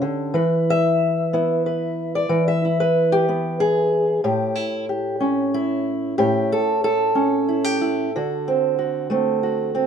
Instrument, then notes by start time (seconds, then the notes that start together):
steel-string acoustic guitar
Already playing: C#4 E4 G4 C#5
0.02 D3
0.34 E3 B4
0.70 E5
1.33 B3 E4
1.66 B4
2.15 D5
2.29 E3
2.48 E5
2.65 E4
2.80 B4
3.12 G4
3.28 B3
3.60 G#4
4.24 A2 G4
4.55 E4
4.89 G4
5.20 C#4
5.54 E4
6.18 A2 G4
6.52 A4
6.84 A4
7.15 C#4
7.49 E4
7.64 G4
7.81 E4
8.16 D3 F#4
8.48 C4
8.79 F#4
9.10 A3 C4
9.43 F#4
9.75 C4